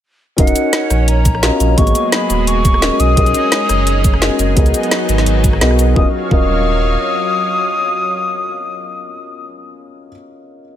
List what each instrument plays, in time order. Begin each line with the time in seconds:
0.37 sub bass D#1, felt piano C#4 D#4 F#4 A#4 D#5, analog synth pad C#4, flute F#5, kick, closed hi-hat
0.47 closed hi-hat, cabasa
0.56 closed hi-hat, cabasa
0.73 snare, closed hi-hat
0.90 sub bass A#1, cross-stick, closed hi-hat, cabasa
1.08 flute A#5, closed hi-hat
1.25 kick, closed hi-hat, cabasa
1.35 cross-stick
1.42 felt piano C#4 F4 F#4 A#4 D#5, snare, closed hi-hat
1.60 sub bass A#1, closed hi-hat, cabasa
1.76 sub bass G#1, analog synth pad F#3 G#3 G#4, felt piano A#3 B3 F#4 G#4 D#5, flute C#6, kick, closed hi-hat
1.87 closed hi-hat, cabasa
1.95 closed hi-hat, cabasa
2.12 flute B5, snare, closed hi-hat
2.30 sub bass D#1, closed hi-hat, cabasa
2.47 flute C#6, closed hi-hat
2.65 kick, closed hi-hat, cabasa
2.74 cross-stick
2.81 felt piano C#4 F#4 G#4 A#4 D#5, snare, closed hi-hat
3.00 sub bass B1, analog synth pad G#3 C#4 D#4, flute D#6, closed hi-hat, cabasa
3.16 sub bass B1, felt piano C#4 F#4 G#4 A#4 D#5, kick, closed hi-hat
3.26 closed hi-hat, cabasa
3.34 closed hi-hat, cabasa
3.52 snare, closed hi-hat
3.69 sub bass F#1, cross-stick, closed hi-hat, cabasa
3.87 closed hi-hat
4.04 kick, closed hi-hat, cabasa
4.14 cross-stick
4.21 felt piano C#4 F#4 G#4 A#4 D#5, snare, closed hi-hat
4.39 sub bass F#1, closed hi-hat, cabasa
4.55 sub bass C#2, analog synth pad F#3 B3 D#4, felt piano B3 F#4 G#4 A#4 D#5, kick, closed hi-hat
4.66 closed hi-hat, cabasa
4.74 closed hi-hat, cabasa
4.83 closed hi-hat
4.91 snare, closed hi-hat
5.09 sub bass G#1, closed hi-hat, cabasa
5.18 snare, closed hi-hat
5.26 sub bass G#1, closed hi-hat
5.44 kick, closed hi-hat, cabasa
5.53 cross-stick
5.61 sub bass B1, felt piano B3 F#4 G#4 A#4 D#5, snare, closed hi-hat
5.71 cross-stick
5.79 closed hi-hat, cabasa
5.94 sub bass D#1, analog synth pad F#3 C#5 F5, felt piano C#4 F4 F#4 A#4, flute D#6, kick
5.98 felt piano D#5
6.29 sub bass D#1, felt piano C#4 F4 F#4 A#4, flute D#6, kick
6.33 felt piano D#5